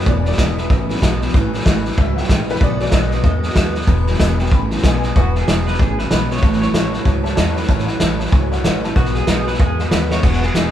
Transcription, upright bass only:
0.07 E1
0.38 E1
0.70 A1
1.02 B1
1.34 A1
1.65 A1
1.98 C#2
2.29 A#1
2.61 B1
2.92 B1
3.24 E2
3.56 D#2
3.87 E1
4.20 E1
4.52 A1
4.83 B1
5.16 E1
5.48 E1
5.80 A1
6.11 B1
6.42 A1
6.73 A1
7.06 C#2
7.37 E2
7.69 A1
8.01 A1
8.32 C#2
8.65 A1
8.96 B1
9.28 B1
9.60 E2
9.91 D#2
10.24 E1
10.54 E1

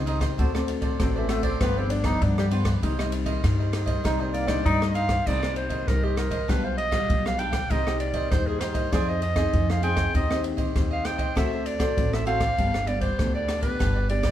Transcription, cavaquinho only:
0.06 D#4 A#4 C5 D#5
0.20 A#4 C5 D#5
0.38 F#4 A4 C5 D5
0.54 A4 C5 D5
0.68 muted cavaquinho stroke
0.82 A4 C5 D5
1.16 A4 C5 D5
1.29 F#4 A4 C5 D5
1.43 A4 C5 D5
1.61 F4 G4 B4 D5
1.77 G4 B4 D5
1.90 muted cavaquinho stroke
2.04 G4 B4 D5
2.38 G4 B4 D5
2.51 F4 G4 B4 D5
2.65 G4 B4 D5
2.83 D#4 A#4 C5 D#5
2.99 A#4 C5 D#5
3.12 muted cavaquinho stroke
3.26 A#4 C5 D#5
3.59 A#4 C5 D#5
3.73 D#4 A#4 C5 D#5
3.86 A#4 C5 D#5
4.04 D#4 A#4 C5 D#5
4.20 A#4 C5 D#5
4.33 muted cavaquinho stroke
4.47 A#4 C5 D#5
4.81 A#4 C5 D#5
4.94 D#4 A#4 C5 D#5
5.09 A#4 C5 D#5
5.27 D#4 A#4 C5 D#5
5.43 A#4 C5 D#5
5.56 muted cavaquinho stroke
5.69 A#4 C5 D#5
6.03 A#4 C5 D#5
6.16 D#4 A#4 C5 D#5
6.30 A#4 C5 D#5
6.48 D4 G4 B4 F5
6.64 G4 B4 F5
6.78 muted cavaquinho stroke
6.91 G4 B4 F5
7.25 G4 B4 F5
7.38 D4 G4 B4 F5
7.52 G4 B4 F5
7.70 D#4 A#4 C5 D#5
7.86 A#4 C5 D#5
8.00 muted cavaquinho stroke
8.14 A#4 C5 D#5
8.47 A#4 C5 D#5
8.60 D#4 A#4 C5 D#5
8.74 A#4 C5 D#5
8.92 F4 G#4 C5 D#5
9.08 G#4 C5 D#5
9.22 muted cavaquinho stroke
9.36 G#4 C5 D#5
9.70 G#4 C5 D#5
9.82 F4 G#4 C5 D#5
9.96 G#4 C5 D#5
10.14 D#4 G4 C5 D#5
10.30 G4 C5 D#5
10.43 muted cavaquinho stroke
10.57 G4 C5 D#5
10.91 G4 C5 D#5
11.04 D#4 G4 C5 D#5
11.18 G4 C5 D#5
11.35 F#4 A4 C5 D5
11.52 A4 C5 D5
11.65 muted cavaquinho stroke
11.79 A4 C5 D5
12.13 A4 C5 D5
12.26 F#4 A4 C5 D5
12.40 A4 C5 D5
12.58 D4 G4 B4 D5
12.74 G4 B4 D5
12.87 muted cavaquinho stroke
13.01 G4 B4 D5
13.35 G4 B4 D5
13.48 D4 G4 B4 D5
13.61 G4 B4 D5
13.79 D4 G4 B4 D5
13.96 G4 B4 D5
14.09 muted cavaquinho stroke
14.23 G4 B4 D5

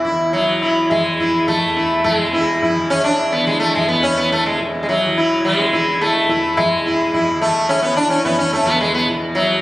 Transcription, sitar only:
0.04 E4
0.33 F#3
0.63 E4
0.91 G#3
1.20 E4
1.48 A3
1.76 E4
2.04 A3
2.15 G#3
2.34 E4
2.63 E4
2.90 C#4
3.04 D4
3.32 B3
3.47 G#3
3.60 A3
3.75 G#3
3.88 B3
4.03 C#4
4.18 B3
4.32 A3
4.46 G#3
4.83 G#3
4.89 F#3
5.18 E4
5.45 G#3
5.73 E4
6.01 A3
6.30 E4
6.57 G#3
6.86 E4
7.14 E4
7.42 A3
7.69 C#4
7.82 B3
7.96 D4
8.10 C#4
8.25 B3
8.39 C#4
8.53 A3
8.66 B3
8.81 G#3
8.94 B3
9.35 F#3

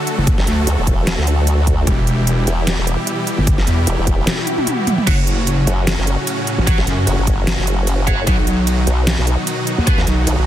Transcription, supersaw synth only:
Already playing: D3 F#3 A3 F#4 A4
1.87 B2 E3 G3 E4 G4
5.07 A2 C#3 F#3 C#4 F#4
8.27 B2 D#3 D#4 F#4

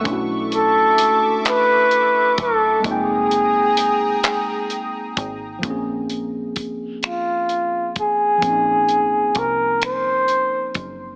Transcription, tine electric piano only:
0.01 A3 C#4
0.06 D4 E4
0.12 F#4
2.79 G#3 A#3
2.85 C4 D#4
2.91 G5
5.59 F3 A#3
5.65 C4 C#4
5.70 G#4
8.37 F3 A#3
8.44 C4 C#4
8.49 D#4

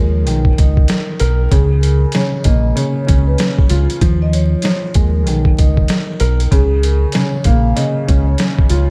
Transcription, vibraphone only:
Already playing: A#4
1.51 G#4
1.81 A#4
2.15 C#5
2.44 D#5
2.77 C#5
3.27 B4
4.22 D#5
4.33 C#5
4.96 A#4
6.53 G#4
6.84 A#4
7.13 C#5
7.46 F5
7.76 D#5
8.27 C#5

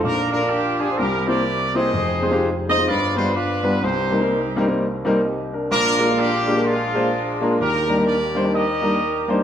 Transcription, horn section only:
0.05 D4 F4 A#4
0.32 A#4
0.50 G4
0.79 G#4
0.98 E4 G4 A#4
1.27 G4 A#4 D5
1.75 G#4 C5 D#5
2.70 D#5
2.88 F4 B4 D5
3.16 C5
3.35 D4 F4 B4
3.83 D#4 G4 C5
5.71 D4 F4 A#4
6.19 D4 G4
6.66 G#3 D4 F4
7.61 D4 G4 A#4
8.07 G4 A#4 D5
8.55 G4 A#4 D#5

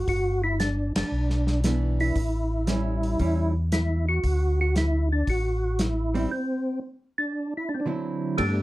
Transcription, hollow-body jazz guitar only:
1.65 E3 B3 D4
2.67 G3 C#4 E4
3.20 G3 C#4 E4
6.14 G3 C4 E4
7.86 D3 F#3 C4 E4

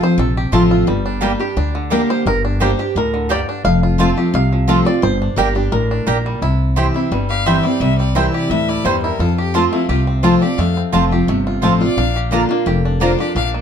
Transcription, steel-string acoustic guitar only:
Already playing: F2
0.01 C4 F4
0.18 C3
0.53 F3 A3 C4 F4
0.87 G2
1.21 G3 A#3 D4 G4
1.39 D4 G4
1.57 D3
1.91 G3 A#3 D4 G4
2.26 G2
2.61 G3 A#3 D4 G4
2.79 D4 G4
2.96 A2
3.30 G2
3.65 F2
3.98 F3 A3 C4 F4
4.17 C4 F4
4.34 C3
4.68 F3 A3 C4 F4
4.85 C4 F4
5.02 G2
5.36 G3 A#3 D4 G4
5.55 D4 G4
5.72 A2
6.07 A#2
6.42 C3
6.76 E3 G3 C4 E4
6.94 C4 E4
7.12 G2
7.46 E3 G3 C4 E4
7.64 C4 E4
7.81 C3
8.15 E3 G3 C4 E4
8.51 A2
8.85 G2
9.20 F2
9.54 F3 A3 C4 F4
9.73 C4 F4
9.89 C3
10.23 F3 A3 C4 F4
10.42 C4 F4
10.59 F2
10.92 F3 A3 C4 F4
11.11 C4 F4
11.28 C3
11.62 F3 A3 C4 F4
11.81 C4 F4
11.98 A#2
12.31 D3 A#3 D4 F4
12.49 D4 F4
12.66 F2
13.00 D3 A#3 D4 F4
13.18 D4 F4
13.36 A#2

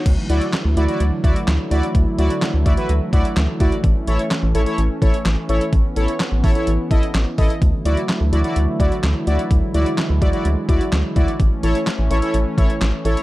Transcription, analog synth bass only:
0.06 D2
0.30 D2
0.65 D2
0.77 D2
1.00 D2
1.24 D2
1.48 D2
1.71 D2
1.95 D2
2.18 D2
2.54 D2
2.66 D2
2.89 D2
3.13 D2
3.37 D2
3.60 D2
3.84 A1
4.07 A1
4.43 A1
4.55 A1
4.78 A1
5.02 A1
5.26 A1
5.49 A1
5.73 A1
5.96 A1
6.32 A1
6.44 A1
6.67 A1
6.91 A1
7.14 A1
7.38 A1
7.62 D2
7.85 D2
8.21 D2
8.33 D2
8.56 D2
8.80 D2
9.03 D2
9.27 D2
9.51 D2
9.74 D2
10.10 D2
10.22 D2
10.45 D2
10.69 D2
10.92 D2
11.16 D2
11.40 A1
11.63 A1
11.99 A1
12.10 A1
12.34 A1
12.58 A1
12.81 A1
13.05 A1

